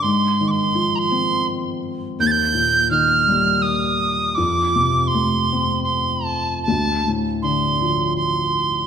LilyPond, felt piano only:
\new Staff \with { instrumentName = "Felt piano" } { \clef bass \time 3/4 \key f \mixolydian \tempo 4 = 82 aes,8 ees8 f8 c'4. | ees,8 bes,8 ees8 g4. | f,8 c8 a8 c'4. | d,8 a,8 d8 f4. | }